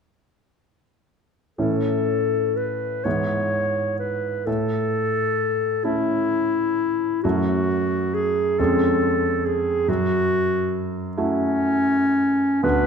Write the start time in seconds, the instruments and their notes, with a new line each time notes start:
1.58 grand piano A2 E3 C#4 E4, clarinet A4
2.57 clarinet B4
3.04 grand piano G#2 E3 B3 E4, clarinet C#5
3.99 clarinet B4
4.46 grand piano A2, clarinet A4
5.84 grand piano A3 C#4 E4, clarinet E4
7.23 grand piano F#2 A3 C#4 F#4, clarinet F#4
8.14 clarinet G#4
8.59 grand piano F2 G#3 C#4 G#4, clarinet A4
9.46 clarinet G#4
9.88 grand piano F#2, clarinet F#4
11.17 grand piano A3 E4 F#4, clarinet C#4
12.63 grand piano D2 B3 D4 F#4, clarinet B4